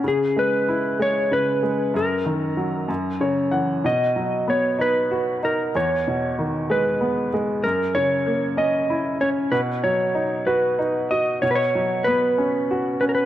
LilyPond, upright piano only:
\new Staff \with { instrumentName = "Upright piano" } { \clef bass \time 6/8 \key b \major \tempo 4. = 63 cis8 gis8 e'8 gis8 cis8 gis8 | fis,8 dis8 fis8 fis,8 <cis cis''>8 <e fis''>8 | b,8 fis8 b8 dis'8 fis'8 dis'8 | e,8 b,8 dis8 gis8 b8 gis8 |
fis,8 cis8 ais8 cis'8 e'8 cis'8 | b,8 fis8 dis'8 fis'8 dis'8 fis'8 | b,8 fis8 b8 cis'8 fis'8 cis'8 | }